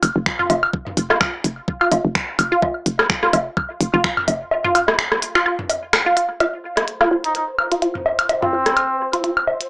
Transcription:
0.03 0.11 F1 loud
0.03 open hi-hat medium
0.03 high woodblock medium
0.16 0.30 F1 loud
0.26 finger snap medium
0.26 kick loud
0.39 0.47 F4 loud
0.39 mid tom medium
0.50 0.66 F1 medium
0.50 0.60 F4 medium
0.50 open hi-hat medium
0.50 low woodblock medium
0.63 high woodblock medium
0.73 kick loud
0.87 mid tom medium
0.97 1.13 F1 loud
0.97 open hi-hat medium
1.10 1.18 F4 loud
1.10 cross-stick medium
1.10 low woodblock medium
1.21 1.30 F4 medium
1.21 finger snap medium
1.21 kick loud
1.21 high woodblock medium
1.44 1.61 F1 medium
1.44 open hi-hat medium
1.68 kick loud
1.81 1.89 F4 loud
1.81 high woodblock medium
1.92 2.00 F1 loud
1.92 2.01 F4 medium
1.92 open hi-hat medium
1.92 low woodblock medium
2.05 2.19 F1 loud
2.15 finger snap medium
2.15 kick loud
2.39 2.55 F1 loud
2.39 open hi-hat medium
2.39 high woodblock medium
2.52 2.60 F4 loud
2.62 2.72 F4 medium
2.62 kick loud
2.62 low woodblock medium
2.86 3.02 F1 loud
2.86 open hi-hat medium
2.99 cross-stick medium
2.99 high woodblock medium
3.10 finger snap medium
3.10 kick loud
3.23 3.31 F4 loud
3.23 cross-stick medium
3.33 3.50 F1 loud
3.33 3.43 F4 medium
3.33 open hi-hat medium
3.33 low woodblock medium
3.57 kick loud
3.57 high woodblock medium
3.81 3.89 F1 loud
3.81 open hi-hat medium
3.94 4.08 F1 loud
3.94 4.01 F4 loud
4.04 4.14 F4 medium
4.04 finger snap medium
4.04 kick loud
4.17 mid tom medium
4.17 high woodblock medium
4.28 4.44 F1 medium
4.28 open hi-hat medium
4.28 low woodblock medium
4.51 low woodblock medium
4.64 4.72 F4 loud
4.64 mid tom loud
4.75 4.85 F4 medium
4.75 open hi-hat medium
4.75 high woodblock medium
4.88 cross-stick medium
4.88 low woodblock medium
4.99 finger snap medium
5.12 cross-stick medium
5.22 open hi-hat medium
5.35 5.43 F4 loud
5.35 finger snap medium
5.35 high woodblock medium
5.46 5.56 F4 medium
5.59 mid tom medium
5.69 open hi-hat medium
5.69 low woodblock medium
5.93 finger snap medium
5.93 cross-stick medium
5.93 high woodblock medium
6.06 6.14 F4 loud
6.17 6.26 F4 medium
6.17 open hi-hat medium
6.40 6.50 F4 medium
6.40 9.70 C5 medium
6.40 closed hi-hat soft
6.40 high woodblock medium
6.40 low woodblock medium
6.77 cross-stick medium
6.77 closed hi-hat medium
6.77 low woodblock soft
6.88 closed hi-hat soft
7.01 7.09 F4 loud
7.01 cross-stick medium
7.01 high woodblock medium
7.11 7.21 F4 medium
7.24 7.31 D#4 medium
7.24 closed hi-hat medium
7.35 7.43 D#4 medium
7.35 closed hi-hat soft
7.59 high woodblock medium
7.72 7.79 F4 loud
7.72 closed hi-hat medium
7.82 7.92 F4 medium
7.82 closed hi-hat soft
7.95 mid tom medium
8.06 low woodblock medium
8.19 closed hi-hat medium
8.19 high woodblock medium
8.29 closed hi-hat soft
8.29 low woodblock medium
8.42 9.08 C4 medium
8.42 8.50 F4 loud
8.42 mid tom medium
8.53 8.63 F4 medium
8.66 cross-stick medium
8.66 closed hi-hat medium
8.77 closed hi-hat soft
8.77 high woodblock medium
9.13 9.21 F4 loud
9.13 closed hi-hat soft
9.24 9.34 F4 medium
9.24 closed hi-hat soft
9.37 high woodblock medium
9.47 low woodblock medium
9.61 closed hi-hat soft

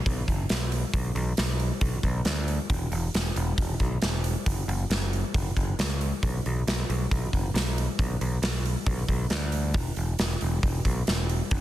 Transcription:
0.06 0.22 B1 medium
0.06 kick medium
0.06 open hi-hat medium
0.28 0.44 F#1 medium
0.28 kick medium
0.28 open hi-hat soft
0.49 0.83 B1 medium
0.49 snare medium
0.49 open hi-hat medium
0.72 open hi-hat soft
0.94 1.10 B1 medium
0.94 kick loud
0.94 open hi-hat medium
1.15 1.32 B1 medium
1.15 open hi-hat soft
1.37 1.70 B1 medium
1.37 snare loud
1.37 open hi-hat medium
1.60 open hi-hat soft
1.81 1.98 B1 medium
1.81 kick medium
1.81 open hi-hat medium
2.03 2.20 B1 medium
2.03 kick medium
2.03 open hi-hat soft
2.25 2.58 D2 medium
2.25 snare medium
2.25 open hi-hat soft
2.48 open hi-hat soft
2.70 2.86 E1 medium
2.70 kick loud
2.70 open hi-hat medium
2.92 3.08 E1 medium
2.92 open hi-hat soft
3.14 3.31 E1 medium
3.14 snare loud
3.14 open hi-hat medium
3.36 3.52 E1 medium
3.36 open hi-hat soft
3.58 3.74 E1 medium
3.58 kick loud
3.58 open hi-hat medium
3.80 3.96 B1 medium
3.80 kick medium
3.80 open hi-hat soft
4.02 4.35 E1 medium
4.02 snare medium
4.02 open hi-hat medium
4.24 open hi-hat medium
4.46 4.62 F#1 medium
4.46 kick loud
4.46 open hi-hat medium
4.68 4.84 F#1 medium
4.68 open hi-hat soft
4.90 5.23 F#1 medium
4.90 snare loud
4.90 open hi-hat medium
5.13 open hi-hat soft
5.34 5.51 F#1 medium
5.34 kick medium
5.34 open hi-hat medium
5.57 5.73 F#1 medium
5.57 kick medium
5.57 open hi-hat soft
5.79 6.11 C#2 medium
5.79 snare medium
5.79 open hi-hat medium
6.01 open hi-hat soft
6.23 6.39 B1 medium
6.23 kick loud
6.23 open hi-hat medium
6.46 6.62 B1 medium
6.46 open hi-hat soft
6.67 6.83 B1 medium
6.67 snare loud
6.67 open hi-hat medium
6.89 7.05 B1 medium
6.89 open hi-hat soft
7.11 7.27 B1 medium
7.11 kick loud
7.11 open hi-hat medium
7.33 7.49 F#1 medium
7.33 kick medium
7.33 open hi-hat soft
7.54 7.87 B1 medium
7.54 snare medium
7.54 open hi-hat medium
7.78 open hi-hat soft
7.99 8.15 B1 medium
7.99 kick medium
7.99 open hi-hat medium
8.21 8.37 B1 medium
8.21 open hi-hat soft
8.42 8.75 B1 medium
8.42 snare loud
8.42 open hi-hat medium
8.66 open hi-hat soft
8.86 9.03 B1 medium
8.86 kick loud
8.86 open hi-hat medium
9.08 9.25 B1 medium
9.08 kick medium
9.08 open hi-hat soft
9.30 9.76 D2 medium
9.30 snare medium
9.30 open hi-hat medium
9.52 open hi-hat soft
9.74 9.91 E1 medium
9.74 kick loud
9.74 open hi-hat medium
9.96 10.13 E1 medium
9.96 open hi-hat soft
10.19 10.35 E1 medium
10.19 snare loud
10.19 open hi-hat medium
10.41 10.58 E1 medium
10.41 open hi-hat soft
10.63 10.80 E1 medium
10.63 kick loud
10.63 open hi-hat medium
10.85 11.01 B1 medium
10.85 kick medium
10.85 open hi-hat soft
11.07 11.40 E1 medium
11.07 snare medium
11.07 open hi-hat medium
11.29 open hi-hat soft
11.51 11.61 F#1 medium
11.51 kick loud
11.51 open hi-hat medium

